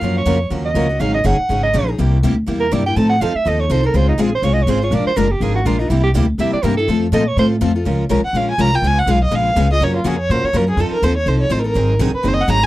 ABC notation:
X:1
M:4/4
L:1/16
Q:"Swing" 1/4=246
K:Bbm
V:1 name="Soprano saxophone"
f2 d6 z2 e6 | f2 e2 g6 e4- e z | z8 z2 B2 =d2 =g2 | =a2 g2 f2 =e2 _e2 d2 c2 B2 |
c2 E2 A2 c2 (3d2 e2 d2 c2 d2 | =d2 c2 B2 =G2 A2 _G2 F2 E2 | =E2 =G2 z4 =e2 =d2 B2 =A2- | =A2 z2 e2 d2 c2 z6 |
z16 | z16 | z16 | z16 |
z16 |]
V:2 name="Violin"
z16 | z16 | z16 | z16 |
z16 | z16 | z16 | z16 |
z6 g2 f2 a2 b2 =g2 | a2 g2 f2 e2 f6 e2 | d2 F2 A2 d2 c2 d2 B2 A2 | =A2 B2 c2 d2 c2 d2 (3c2 B2 B2- |
B2 z4 _c2 (3=c2 e2 g2 b2 z2 |]
V:3 name="Steel-string acoustic guitar"
[G,DFB]2 z2 [G,DFB]2 z2 [G,DFB]2 z2 [G,DFB]2 z2 | [D,G,DEA]2 z2 [D,G,DEA]2 z2 [D,G,DEA]2 z2 [D,G,DEA]2 z2 | [C,=G,B,=E=G]2 z2 [C,G,B,EG]2 z2 [C,G,B,EG]2 z2 [C,G,B,EG]2 z2 | [F,CE=A]2 z2 [F,CEA]2 z2 [F,CEA]2 z2 [F,CEA]2 z2 |
[D,A,CFA]2 z2 [D,A,CFA]2 z2 [D,A,CFA]2 z2 [D,A,CFA]2 z2 | [F,A,=DFB]2 z2 [F,A,DFB]2 z2 [F,A,DFB]2 z2 [F,A,DFB]2 z2 | [C,=G,B,=E=G]2 z2 [C,G,B,EG]2 z2 [C,G,B,EG]2 z2 [C,G,B,EG]2 z2 | [F,CF=A]2 z2 [F,CFA]2 z2 [F,CFA]2 z2 [F,CFA]2 z2 |
[F,A,DFB]2 z2 [F,A,DFB]2 z2 [F,A,DFB]2 z2 [F,A,DFB]2 z2 | [D,A,_CFA]2 z2 [D,A,CFA]2 z2 [D,A,CFA]2 z2 [D,A,CFA]2 z2 | [G,DFB]2 z2 [G,DFB]2 z2 [G,DFB]2 z2 [G,DFB]2 z2 | [F,CE=A]2 z2 [F,CEA]2 z2 [F,CEA]2 z2 [F,CEA]2 z2 |
[E,G,CEA]2 z2 [E,G,CEA]2 z2 [E,G,CEA]2 z2 [E,G,CEA]2 z2 |]
V:4 name="Steel-string acoustic guitar"
[D,F,B,DG]2 z2 [D,F,B,DG]2 z2 [D,F,B,DG]2 z2 [D,F,B,DG]2 [B,DG]2 | [D,G,DEA]2 z2 [D,G,DEA]2 z2 [D,G,DEA]2 z2 [D,G,DEA]2 [DEA]2 | [C,=G,B,=E=G]2 z2 [C,G,B,EG]2 z2 [C,G,B,EG]2 z2 [C,G,B,EG]2 [B,EG]2 | [F,CE=A]2 z2 [F,CEA]2 z2 [F,CEA]2 z2 [F,CEA]2 [CEA]2 |
[D,A,CFA]2 z2 [D,A,CFA]2 z2 [D,A,CFA]2 z2 [D,A,CFA]2 [CFA]2 | [F,A,=DFB]2 z2 [F,A,DFB]2 z2 [F,A,DFB]2 z2 [F,A,DFB]2 [DFB]2 | [C,=G,B,=E=G]2 z2 [C,G,B,EG]2 z2 [C,G,B,EG]2 z2 [C,G,B,EG]2 [B,EG]2 | [F,=A,CF=A]2 z2 [F,A,CFA]2 z2 [F,A,CFA]2 z2 [F,A,CFA]2 [CFA]2 |
[F,A,DFB]2 z2 [F,A,DFB]2 z2 [F,A,DFB]2 z2 [F,A,DFB]2 [DFB]2 | [D,A,_CFA]2 z2 [D,A,CFA]2 z2 [D,A,CFA]2 z2 [D,A,CFA]2 [CFA]2 | [D,F,B,DG]2 z2 [D,F,B,DG]2 z2 [D,F,B,DG]2 z2 [D,F,B,DG]2 [B,DG]2 | [F,CE=A]2 z2 [F,CEA]2 z2 [F,CEA]2 z2 [F,CEA]2 [CEA]2 |
[E,G,CEA]2 z2 [E,G,CEA]2 z2 [E,G,CEA]2 z2 [E,G,CEA]2 [EA]2 |]
V:5 name="Upright bass" clef=bass
G,,4 F,,4 E,,4 D,,4 | A,,,4 G,,,2 z2 A,,,4 B,,,4 | C,,4 =D,,4 =E,,4 =G,,4 | =A,,4 F,,2 z2 E,,4 C,,4 |
D,,4 B,,,4 C,,4 A,,,4 | B,,,2 z2 G,,,4 A,,,4 B,,,4 | C,,4 =D,,4 =E,,2 z2 =G,,4 | F,,4 B,,4 =A,,4 F,,4 |
D,,4 _C,,2 z2 B,,,4 =C,,4 | D,,4 _C,,4 B,,,4 D,,4 | G,,4 F,,4 B,,2 z2 G,,4 | F,,2 z2 E,,4 C,,4 =A,,,4 |
A,,,4 B,,,2 z2 G,,,4 A,,,4 |]